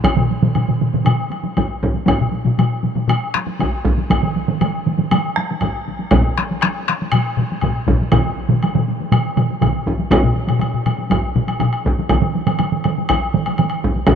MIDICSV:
0, 0, Header, 1, 3, 480
1, 0, Start_track
1, 0, Tempo, 505902
1, 35, Time_signature, 4, 2, 24, 8
1, 6755, Tempo, 496278
1, 13557, End_track
2, 0, Start_track
2, 0, Title_t, "Taiko and cinematic ensemble drums"
2, 36, Note_on_c, 9, 41, 75
2, 36, Note_on_c, 9, 48, 56
2, 131, Note_off_c, 9, 41, 0
2, 131, Note_off_c, 9, 48, 0
2, 158, Note_on_c, 9, 47, 92
2, 169, Note_on_c, 9, 45, 90
2, 253, Note_off_c, 9, 47, 0
2, 264, Note_off_c, 9, 45, 0
2, 286, Note_on_c, 9, 48, 43
2, 381, Note_off_c, 9, 48, 0
2, 404, Note_on_c, 9, 47, 94
2, 404, Note_on_c, 9, 48, 46
2, 410, Note_on_c, 9, 45, 84
2, 499, Note_off_c, 9, 47, 0
2, 499, Note_off_c, 9, 48, 0
2, 505, Note_off_c, 9, 45, 0
2, 525, Note_on_c, 9, 47, 64
2, 528, Note_on_c, 9, 48, 65
2, 535, Note_on_c, 9, 45, 67
2, 620, Note_off_c, 9, 47, 0
2, 623, Note_off_c, 9, 48, 0
2, 630, Note_off_c, 9, 45, 0
2, 650, Note_on_c, 9, 47, 67
2, 653, Note_on_c, 9, 45, 68
2, 745, Note_off_c, 9, 47, 0
2, 748, Note_off_c, 9, 45, 0
2, 769, Note_on_c, 9, 48, 43
2, 771, Note_on_c, 9, 47, 65
2, 775, Note_on_c, 9, 45, 62
2, 864, Note_off_c, 9, 48, 0
2, 866, Note_off_c, 9, 47, 0
2, 870, Note_off_c, 9, 45, 0
2, 891, Note_on_c, 9, 45, 66
2, 891, Note_on_c, 9, 48, 46
2, 892, Note_on_c, 9, 47, 73
2, 985, Note_off_c, 9, 48, 0
2, 986, Note_off_c, 9, 45, 0
2, 987, Note_off_c, 9, 47, 0
2, 996, Note_on_c, 9, 48, 61
2, 1013, Note_on_c, 9, 45, 84
2, 1014, Note_on_c, 9, 47, 76
2, 1091, Note_off_c, 9, 48, 0
2, 1108, Note_off_c, 9, 45, 0
2, 1109, Note_off_c, 9, 47, 0
2, 1234, Note_on_c, 9, 48, 47
2, 1329, Note_off_c, 9, 48, 0
2, 1364, Note_on_c, 9, 48, 52
2, 1459, Note_off_c, 9, 48, 0
2, 1487, Note_on_c, 9, 48, 57
2, 1492, Note_on_c, 9, 41, 65
2, 1582, Note_off_c, 9, 48, 0
2, 1587, Note_off_c, 9, 41, 0
2, 1734, Note_on_c, 9, 48, 49
2, 1737, Note_on_c, 9, 41, 76
2, 1829, Note_off_c, 9, 48, 0
2, 1832, Note_off_c, 9, 41, 0
2, 1841, Note_on_c, 9, 48, 47
2, 1935, Note_off_c, 9, 48, 0
2, 1954, Note_on_c, 9, 48, 73
2, 1977, Note_on_c, 9, 41, 83
2, 2049, Note_off_c, 9, 48, 0
2, 2071, Note_off_c, 9, 41, 0
2, 2099, Note_on_c, 9, 45, 99
2, 2194, Note_off_c, 9, 45, 0
2, 2198, Note_on_c, 9, 48, 52
2, 2293, Note_off_c, 9, 48, 0
2, 2321, Note_on_c, 9, 48, 52
2, 2330, Note_on_c, 9, 45, 92
2, 2416, Note_off_c, 9, 48, 0
2, 2425, Note_off_c, 9, 45, 0
2, 2451, Note_on_c, 9, 45, 95
2, 2455, Note_on_c, 9, 48, 68
2, 2546, Note_off_c, 9, 45, 0
2, 2550, Note_off_c, 9, 48, 0
2, 2684, Note_on_c, 9, 48, 57
2, 2691, Note_on_c, 9, 45, 61
2, 2779, Note_off_c, 9, 48, 0
2, 2786, Note_off_c, 9, 45, 0
2, 2805, Note_on_c, 9, 48, 55
2, 2806, Note_on_c, 9, 45, 66
2, 2900, Note_off_c, 9, 48, 0
2, 2901, Note_off_c, 9, 45, 0
2, 2919, Note_on_c, 9, 45, 91
2, 2934, Note_on_c, 9, 48, 66
2, 3014, Note_off_c, 9, 45, 0
2, 3029, Note_off_c, 9, 48, 0
2, 3169, Note_on_c, 9, 37, 69
2, 3178, Note_on_c, 9, 48, 53
2, 3264, Note_off_c, 9, 37, 0
2, 3273, Note_off_c, 9, 48, 0
2, 3288, Note_on_c, 9, 48, 56
2, 3383, Note_off_c, 9, 48, 0
2, 3410, Note_on_c, 9, 48, 63
2, 3419, Note_on_c, 9, 41, 66
2, 3505, Note_off_c, 9, 48, 0
2, 3513, Note_off_c, 9, 41, 0
2, 3648, Note_on_c, 9, 48, 52
2, 3653, Note_on_c, 9, 41, 78
2, 3743, Note_off_c, 9, 48, 0
2, 3748, Note_off_c, 9, 41, 0
2, 3773, Note_on_c, 9, 48, 52
2, 3868, Note_off_c, 9, 48, 0
2, 3891, Note_on_c, 9, 48, 80
2, 3895, Note_on_c, 9, 41, 79
2, 3986, Note_off_c, 9, 48, 0
2, 3990, Note_off_c, 9, 41, 0
2, 4014, Note_on_c, 9, 47, 88
2, 4108, Note_off_c, 9, 47, 0
2, 4135, Note_on_c, 9, 48, 55
2, 4230, Note_off_c, 9, 48, 0
2, 4252, Note_on_c, 9, 47, 93
2, 4254, Note_on_c, 9, 48, 55
2, 4347, Note_off_c, 9, 47, 0
2, 4349, Note_off_c, 9, 48, 0
2, 4373, Note_on_c, 9, 48, 75
2, 4375, Note_on_c, 9, 47, 82
2, 4468, Note_off_c, 9, 48, 0
2, 4470, Note_off_c, 9, 47, 0
2, 4612, Note_on_c, 9, 48, 56
2, 4617, Note_on_c, 9, 47, 67
2, 4707, Note_off_c, 9, 48, 0
2, 4712, Note_off_c, 9, 47, 0
2, 4728, Note_on_c, 9, 48, 56
2, 4731, Note_on_c, 9, 47, 68
2, 4823, Note_off_c, 9, 48, 0
2, 4826, Note_off_c, 9, 47, 0
2, 4853, Note_on_c, 9, 47, 74
2, 4857, Note_on_c, 9, 48, 76
2, 4948, Note_off_c, 9, 47, 0
2, 4952, Note_off_c, 9, 48, 0
2, 5086, Note_on_c, 9, 37, 69
2, 5098, Note_on_c, 9, 48, 56
2, 5181, Note_off_c, 9, 37, 0
2, 5193, Note_off_c, 9, 48, 0
2, 5226, Note_on_c, 9, 48, 57
2, 5321, Note_off_c, 9, 48, 0
2, 5330, Note_on_c, 9, 41, 64
2, 5337, Note_on_c, 9, 48, 57
2, 5425, Note_off_c, 9, 41, 0
2, 5432, Note_off_c, 9, 48, 0
2, 5576, Note_on_c, 9, 48, 44
2, 5671, Note_off_c, 9, 48, 0
2, 5683, Note_on_c, 9, 48, 45
2, 5778, Note_off_c, 9, 48, 0
2, 5804, Note_on_c, 9, 41, 99
2, 5806, Note_on_c, 9, 45, 93
2, 5814, Note_on_c, 9, 48, 68
2, 5899, Note_off_c, 9, 41, 0
2, 5901, Note_off_c, 9, 45, 0
2, 5908, Note_off_c, 9, 48, 0
2, 6049, Note_on_c, 9, 37, 67
2, 6057, Note_on_c, 9, 48, 47
2, 6144, Note_off_c, 9, 37, 0
2, 6152, Note_off_c, 9, 48, 0
2, 6175, Note_on_c, 9, 48, 49
2, 6269, Note_off_c, 9, 48, 0
2, 6286, Note_on_c, 9, 37, 77
2, 6297, Note_on_c, 9, 48, 66
2, 6381, Note_off_c, 9, 37, 0
2, 6391, Note_off_c, 9, 48, 0
2, 6528, Note_on_c, 9, 37, 71
2, 6537, Note_on_c, 9, 48, 48
2, 6623, Note_off_c, 9, 37, 0
2, 6632, Note_off_c, 9, 48, 0
2, 6658, Note_on_c, 9, 48, 44
2, 6753, Note_off_c, 9, 48, 0
2, 6757, Note_on_c, 9, 45, 86
2, 6783, Note_on_c, 9, 48, 59
2, 6853, Note_off_c, 9, 45, 0
2, 6879, Note_off_c, 9, 48, 0
2, 6998, Note_on_c, 9, 45, 92
2, 7015, Note_on_c, 9, 48, 50
2, 7095, Note_off_c, 9, 45, 0
2, 7112, Note_off_c, 9, 48, 0
2, 7140, Note_on_c, 9, 48, 43
2, 7237, Note_off_c, 9, 48, 0
2, 7242, Note_on_c, 9, 45, 100
2, 7251, Note_on_c, 9, 41, 56
2, 7253, Note_on_c, 9, 48, 57
2, 7338, Note_off_c, 9, 45, 0
2, 7348, Note_off_c, 9, 41, 0
2, 7350, Note_off_c, 9, 48, 0
2, 7478, Note_on_c, 9, 45, 92
2, 7492, Note_on_c, 9, 41, 76
2, 7503, Note_on_c, 9, 48, 44
2, 7575, Note_off_c, 9, 45, 0
2, 7589, Note_off_c, 9, 41, 0
2, 7600, Note_off_c, 9, 48, 0
2, 7621, Note_on_c, 9, 48, 39
2, 7718, Note_off_c, 9, 48, 0
2, 7721, Note_on_c, 9, 45, 90
2, 7722, Note_on_c, 9, 47, 98
2, 7725, Note_on_c, 9, 41, 81
2, 7741, Note_on_c, 9, 48, 59
2, 7818, Note_off_c, 9, 45, 0
2, 7818, Note_off_c, 9, 47, 0
2, 7822, Note_off_c, 9, 41, 0
2, 7838, Note_off_c, 9, 48, 0
2, 7972, Note_on_c, 9, 48, 40
2, 8069, Note_off_c, 9, 48, 0
2, 8078, Note_on_c, 9, 47, 83
2, 8083, Note_on_c, 9, 45, 84
2, 8096, Note_on_c, 9, 48, 50
2, 8175, Note_off_c, 9, 47, 0
2, 8180, Note_off_c, 9, 45, 0
2, 8192, Note_off_c, 9, 48, 0
2, 8219, Note_on_c, 9, 48, 61
2, 8316, Note_off_c, 9, 48, 0
2, 8331, Note_on_c, 9, 45, 102
2, 8333, Note_on_c, 9, 47, 88
2, 8427, Note_off_c, 9, 45, 0
2, 8430, Note_off_c, 9, 47, 0
2, 8462, Note_on_c, 9, 48, 43
2, 8559, Note_off_c, 9, 48, 0
2, 8578, Note_on_c, 9, 48, 48
2, 8675, Note_off_c, 9, 48, 0
2, 8688, Note_on_c, 9, 45, 86
2, 8688, Note_on_c, 9, 47, 88
2, 8697, Note_on_c, 9, 48, 61
2, 8785, Note_off_c, 9, 45, 0
2, 8785, Note_off_c, 9, 47, 0
2, 8794, Note_off_c, 9, 48, 0
2, 8929, Note_on_c, 9, 45, 94
2, 8933, Note_on_c, 9, 47, 89
2, 8943, Note_on_c, 9, 48, 46
2, 9026, Note_off_c, 9, 45, 0
2, 9030, Note_off_c, 9, 47, 0
2, 9040, Note_off_c, 9, 48, 0
2, 9062, Note_on_c, 9, 48, 47
2, 9159, Note_off_c, 9, 48, 0
2, 9168, Note_on_c, 9, 48, 57
2, 9170, Note_on_c, 9, 47, 85
2, 9176, Note_on_c, 9, 45, 100
2, 9180, Note_on_c, 9, 41, 59
2, 9264, Note_off_c, 9, 48, 0
2, 9266, Note_off_c, 9, 47, 0
2, 9273, Note_off_c, 9, 45, 0
2, 9276, Note_off_c, 9, 41, 0
2, 9408, Note_on_c, 9, 48, 45
2, 9412, Note_on_c, 9, 41, 66
2, 9504, Note_off_c, 9, 48, 0
2, 9509, Note_off_c, 9, 41, 0
2, 9530, Note_on_c, 9, 48, 50
2, 9627, Note_off_c, 9, 48, 0
2, 9642, Note_on_c, 9, 48, 59
2, 9646, Note_on_c, 9, 41, 99
2, 9739, Note_off_c, 9, 48, 0
2, 9743, Note_off_c, 9, 41, 0
2, 9774, Note_on_c, 9, 45, 84
2, 9871, Note_off_c, 9, 45, 0
2, 9883, Note_on_c, 9, 48, 42
2, 9980, Note_off_c, 9, 48, 0
2, 10000, Note_on_c, 9, 48, 49
2, 10022, Note_on_c, 9, 45, 95
2, 10097, Note_off_c, 9, 48, 0
2, 10113, Note_on_c, 9, 48, 64
2, 10118, Note_off_c, 9, 45, 0
2, 10140, Note_on_c, 9, 45, 75
2, 10210, Note_off_c, 9, 48, 0
2, 10236, Note_off_c, 9, 45, 0
2, 10258, Note_on_c, 9, 45, 69
2, 10355, Note_off_c, 9, 45, 0
2, 10375, Note_on_c, 9, 45, 92
2, 10377, Note_on_c, 9, 48, 50
2, 10472, Note_off_c, 9, 45, 0
2, 10473, Note_off_c, 9, 48, 0
2, 10492, Note_on_c, 9, 48, 45
2, 10589, Note_off_c, 9, 48, 0
2, 10604, Note_on_c, 9, 48, 66
2, 10617, Note_on_c, 9, 41, 71
2, 10701, Note_off_c, 9, 48, 0
2, 10714, Note_off_c, 9, 41, 0
2, 10853, Note_on_c, 9, 48, 47
2, 10854, Note_on_c, 9, 45, 97
2, 10950, Note_off_c, 9, 45, 0
2, 10950, Note_off_c, 9, 48, 0
2, 10978, Note_on_c, 9, 48, 48
2, 11075, Note_off_c, 9, 48, 0
2, 11088, Note_on_c, 9, 48, 62
2, 11097, Note_on_c, 9, 45, 101
2, 11185, Note_off_c, 9, 48, 0
2, 11193, Note_off_c, 9, 45, 0
2, 11329, Note_on_c, 9, 48, 43
2, 11339, Note_on_c, 9, 41, 74
2, 11426, Note_off_c, 9, 48, 0
2, 11436, Note_off_c, 9, 41, 0
2, 11463, Note_on_c, 9, 48, 54
2, 11559, Note_off_c, 9, 48, 0
2, 11573, Note_on_c, 9, 41, 74
2, 11586, Note_on_c, 9, 48, 63
2, 11669, Note_off_c, 9, 41, 0
2, 11683, Note_off_c, 9, 48, 0
2, 11686, Note_on_c, 9, 47, 90
2, 11782, Note_off_c, 9, 47, 0
2, 11816, Note_on_c, 9, 48, 50
2, 11913, Note_off_c, 9, 48, 0
2, 11927, Note_on_c, 9, 47, 91
2, 11937, Note_on_c, 9, 48, 51
2, 12023, Note_off_c, 9, 47, 0
2, 12034, Note_off_c, 9, 48, 0
2, 12048, Note_on_c, 9, 48, 63
2, 12050, Note_on_c, 9, 47, 60
2, 12145, Note_off_c, 9, 48, 0
2, 12147, Note_off_c, 9, 47, 0
2, 12173, Note_on_c, 9, 47, 68
2, 12270, Note_off_c, 9, 47, 0
2, 12300, Note_on_c, 9, 47, 88
2, 12300, Note_on_c, 9, 48, 46
2, 12397, Note_off_c, 9, 47, 0
2, 12397, Note_off_c, 9, 48, 0
2, 12425, Note_on_c, 9, 48, 49
2, 12521, Note_off_c, 9, 48, 0
2, 12535, Note_on_c, 9, 41, 72
2, 12544, Note_on_c, 9, 48, 67
2, 12632, Note_off_c, 9, 41, 0
2, 12641, Note_off_c, 9, 48, 0
2, 12772, Note_on_c, 9, 47, 96
2, 12869, Note_off_c, 9, 47, 0
2, 12901, Note_on_c, 9, 48, 53
2, 12998, Note_off_c, 9, 48, 0
2, 13012, Note_on_c, 9, 47, 88
2, 13015, Note_on_c, 9, 48, 65
2, 13109, Note_off_c, 9, 47, 0
2, 13112, Note_off_c, 9, 48, 0
2, 13254, Note_on_c, 9, 41, 71
2, 13256, Note_on_c, 9, 48, 42
2, 13351, Note_off_c, 9, 41, 0
2, 13353, Note_off_c, 9, 48, 0
2, 13371, Note_on_c, 9, 48, 43
2, 13468, Note_off_c, 9, 48, 0
2, 13481, Note_on_c, 9, 41, 98
2, 13485, Note_on_c, 9, 45, 89
2, 13485, Note_on_c, 9, 48, 64
2, 13557, Note_off_c, 9, 41, 0
2, 13557, Note_off_c, 9, 45, 0
2, 13557, Note_off_c, 9, 48, 0
2, 13557, End_track
3, 0, Start_track
3, 0, Title_t, "Drums"
3, 43, Note_on_c, 9, 76, 51
3, 138, Note_off_c, 9, 76, 0
3, 522, Note_on_c, 9, 76, 36
3, 617, Note_off_c, 9, 76, 0
3, 1005, Note_on_c, 9, 76, 50
3, 1100, Note_off_c, 9, 76, 0
3, 1250, Note_on_c, 9, 76, 31
3, 1345, Note_off_c, 9, 76, 0
3, 1488, Note_on_c, 9, 76, 39
3, 1583, Note_off_c, 9, 76, 0
3, 1976, Note_on_c, 9, 76, 46
3, 2071, Note_off_c, 9, 76, 0
3, 2457, Note_on_c, 9, 76, 41
3, 2551, Note_off_c, 9, 76, 0
3, 2936, Note_on_c, 9, 76, 50
3, 3031, Note_off_c, 9, 76, 0
3, 3420, Note_on_c, 9, 76, 43
3, 3515, Note_off_c, 9, 76, 0
3, 3897, Note_on_c, 9, 76, 55
3, 3992, Note_off_c, 9, 76, 0
3, 4375, Note_on_c, 9, 76, 46
3, 4470, Note_off_c, 9, 76, 0
3, 4852, Note_on_c, 9, 76, 52
3, 4947, Note_off_c, 9, 76, 0
3, 5322, Note_on_c, 9, 76, 42
3, 5417, Note_off_c, 9, 76, 0
3, 5796, Note_on_c, 9, 76, 47
3, 5891, Note_off_c, 9, 76, 0
3, 6273, Note_on_c, 9, 76, 42
3, 6368, Note_off_c, 9, 76, 0
3, 6752, Note_on_c, 9, 76, 56
3, 6849, Note_off_c, 9, 76, 0
3, 7234, Note_on_c, 9, 76, 40
3, 7331, Note_off_c, 9, 76, 0
3, 7720, Note_on_c, 9, 76, 51
3, 7817, Note_off_c, 9, 76, 0
3, 8212, Note_on_c, 9, 76, 38
3, 8309, Note_off_c, 9, 76, 0
3, 8694, Note_on_c, 9, 76, 51
3, 8790, Note_off_c, 9, 76, 0
3, 8934, Note_on_c, 9, 76, 34
3, 9031, Note_off_c, 9, 76, 0
3, 9174, Note_on_c, 9, 76, 42
3, 9271, Note_off_c, 9, 76, 0
3, 9655, Note_on_c, 9, 76, 50
3, 9752, Note_off_c, 9, 76, 0
3, 10011, Note_on_c, 9, 76, 35
3, 10108, Note_off_c, 9, 76, 0
3, 10136, Note_on_c, 9, 76, 38
3, 10232, Note_off_c, 9, 76, 0
3, 10373, Note_on_c, 9, 76, 41
3, 10469, Note_off_c, 9, 76, 0
3, 10614, Note_on_c, 9, 76, 43
3, 10711, Note_off_c, 9, 76, 0
3, 10974, Note_on_c, 9, 76, 43
3, 11071, Note_off_c, 9, 76, 0
3, 11090, Note_on_c, 9, 76, 42
3, 11186, Note_off_c, 9, 76, 0
3, 11211, Note_on_c, 9, 76, 38
3, 11308, Note_off_c, 9, 76, 0
3, 11567, Note_on_c, 9, 76, 52
3, 11663, Note_off_c, 9, 76, 0
3, 11929, Note_on_c, 9, 76, 40
3, 12025, Note_off_c, 9, 76, 0
3, 12044, Note_on_c, 9, 76, 43
3, 12140, Note_off_c, 9, 76, 0
3, 12289, Note_on_c, 9, 76, 39
3, 12386, Note_off_c, 9, 76, 0
3, 12529, Note_on_c, 9, 76, 56
3, 12625, Note_off_c, 9, 76, 0
3, 12888, Note_on_c, 9, 76, 44
3, 12984, Note_off_c, 9, 76, 0
3, 13004, Note_on_c, 9, 76, 38
3, 13101, Note_off_c, 9, 76, 0
3, 13117, Note_on_c, 9, 76, 37
3, 13213, Note_off_c, 9, 76, 0
3, 13474, Note_on_c, 9, 76, 47
3, 13557, Note_off_c, 9, 76, 0
3, 13557, End_track
0, 0, End_of_file